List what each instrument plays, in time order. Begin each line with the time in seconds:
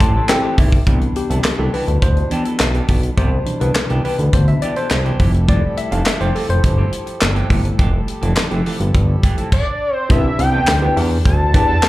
Already playing: harmonium F3 E4 G4 A4, analog synth lead C6
0.00 analog synth bass A1, clean electric guitar E3 A3 C4 G4, tine electric piano A5, kick, closed hi-hat
0.15 clean electric guitar E3 A3 C4 A4
0.29 tine electric piano C4 E4 G4 A4 G5, muted clean electric guitar stroke, snare, clap, closed hi-hat
0.43 clean electric guitar E3 A3 C4 G4
0.58 analog synth bass B1, clean electric guitar E3 A3 C4 G4, tine electric piano E5, kick, open hi-hat
0.72 kick
0.86 analog synth bass C2, harmonium B2 G3 D4 E4, tine electric piano E3 B3 D4, clean electric guitar E3 B3 D4 G4, kick, closed hi-hat
1.01 muted clean electric guitar stroke, closed hi-hat
1.15 tine electric piano G4, muted clean electric guitar stroke, closed hi-hat
1.30 analog synth bass C2, clean electric guitar E3 B3 D4 A4, closed hi-hat
1.44 snare, clap, closed hi-hat
1.58 analog synth bass C2, clean electric guitar E3 B3 D4 G4, tine electric piano A4
1.73 clean electric guitar E3 B3 D4 G4, tine electric piano B4, open hi-hat
1.88 analog synth bass D2, closed hi-hat
2.02 analog synth bass D2, tine electric piano C5, muted clean electric guitar stroke, kick, closed hi-hat
2.17 muted clean electric guitar stroke, closed hi-hat
2.30 tine electric piano E3 B3 D4, clean electric guitar E3 B3 D4 G4, closed hi-hat
2.45 clean electric guitar E3 B3 D4 A4, closed hi-hat
2.59 analog synth bass B1, snare, clap, closed hi-hat
2.74 clean electric guitar E3 B3 D4 G4, closed hi-hat
2.88 analog synth bass B1, clean electric guitar E3 B3 D4 G4, kick, open hi-hat
3.03 muted clean electric guitar stroke, closed hi-hat
3.17 analog synth bass C2, clean electric guitar E3 B3 D4 G4, tine electric piano C5, kick, closed hi-hat
3.31 muted clean electric guitar stroke
3.45 tine electric piano B2 E3 D4, muted clean electric guitar stroke, closed hi-hat
3.60 analog synth bass C2, clean electric guitar E3 B3 D4 A4, tine electric piano B4, closed hi-hat
3.75 snare, clap, closed hi-hat
3.89 analog synth bass C2, clean electric guitar E3 B3 D4 G4, closed hi-hat
4.04 clean electric guitar E3 B3 D4 G4, tine electric piano B4, open hi-hat
4.19 analog synth bass D2, closed hi-hat
4.33 analog synth bass D2, tine electric piano E3 B3 D4 C5, muted clean electric guitar stroke, kick, closed hi-hat
4.47 tine electric piano E5, muted clean electric guitar stroke, closed hi-hat
4.62 clean electric guitar E3 B3 D4 G4, tine electric piano D5, closed hi-hat
4.76 clean electric guitar E3 B3 D4 A4, tine electric piano C5, closed hi-hat
4.90 analog synth bass C2, muted clean electric guitar stroke, snare, clap, closed hi-hat
5.05 clean electric guitar E3 B3 D4 G4, closed hi-hat
5.19 analog synth bass F1, clean electric guitar E3 A3 C4 G4, harmonium F3 G4 A4, kick, open hi-hat
5.34 muted clean electric guitar stroke, closed hi-hat
5.48 clean electric guitar E3 A3 C4 G4, tine electric piano G3 A3 E4 D5, kick, closed hi-hat
5.63 muted clean electric guitar stroke
5.77 tine electric piano E5, muted clean electric guitar stroke, closed hi-hat
5.91 analog synth bass F1, clean electric guitar E3 A3 C4 A4, tine electric piano F5, closed hi-hat
6.06 tine electric piano E5, snare, clap, closed hi-hat
6.20 analog synth bass F1, clean electric guitar E3 A3 C4 G4, tine electric piano C5, closed hi-hat
6.35 clean electric guitar E3 A3 C4 G4, tine electric piano A4, open hi-hat
6.49 analog synth bass F1, tine electric piano C5, closed hi-hat
6.63 analog synth bass G1, muted clean electric guitar stroke, kick, closed hi-hat
6.77 clean electric guitar E3 A3 C4 G4
6.92 muted clean electric guitar stroke, closed hi-hat
7.06 muted clean electric guitar stroke, closed hi-hat
7.21 analog synth bass G1, muted clean electric guitar stroke, snare, clap, closed hi-hat
7.35 clean electric guitar E3 A3 C4 G4, closed hi-hat
7.49 analog synth bass G1, clean electric guitar E3 A3 C4 G4, tine electric piano G3 A3 E4, kick, open hi-hat
7.64 muted clean electric guitar stroke, closed hi-hat
7.78 analog synth bass F1, clean electric guitar E3 A3 C4 G4, kick, closed hi-hat
7.93 muted clean electric guitar stroke
8.07 muted clean electric guitar stroke, closed hi-hat
8.22 analog synth bass F1, clean electric guitar E3 A3 C4 A4, closed hi-hat
8.36 snare, clap, closed hi-hat
8.50 analog synth bass F1, clean electric guitar E3 A3 C4 G4, closed hi-hat
8.65 clean electric guitar E3 A3 C4 G4, open hi-hat
8.80 analog synth bass G1, muted clean electric guitar stroke, closed hi-hat
8.94 analog synth bass G1, muted clean electric guitar stroke, kick, closed hi-hat
9.08 muted clean electric guitar stroke
9.23 clean electric guitar E3 A3 C4 G4, kick, closed hi-hat
9.38 clean electric guitar E3 A3 C4 A4, closed hi-hat
9.52 analog synth lead D5, kick, crash
9.94 analog synth lead C5
10.09 analog synth bass C2, harmonium C3 B3 D4 E4, clean electric guitar E3 B3 D4 G4, tine electric piano D4 E4 G4 B4, analog synth lead E5, kick, closed hi-hat
10.24 muted clean electric guitar stroke
10.39 analog synth bass C2, analog synth lead G5, muted clean electric guitar stroke, closed hi-hat
10.53 clean electric guitar E3 B3 D4 A4
10.67 analog synth bass D2, snare, clap, closed hi-hat
10.82 clean electric guitar E3 B3 D4 G4, tine electric piano D4 E4 G4 B4
10.96 analog synth bass E2, clean electric guitar E3 B3 D4 G4, open hi-hat
11.10 muted clean electric guitar stroke
11.25 analog synth bass D2, analog synth lead A5, muted clean electric guitar stroke, kick, closed hi-hat
11.40 muted clean electric guitar stroke
11.54 analog synth bass E2, clean electric guitar E3 B3 D4 G4, tine electric piano D4 E4 G4 B4, kick, closed hi-hat
11.68 clean electric guitar E3 B3 D4 A4
11.83 muted clean electric guitar stroke, snare, clap, closed hi-hat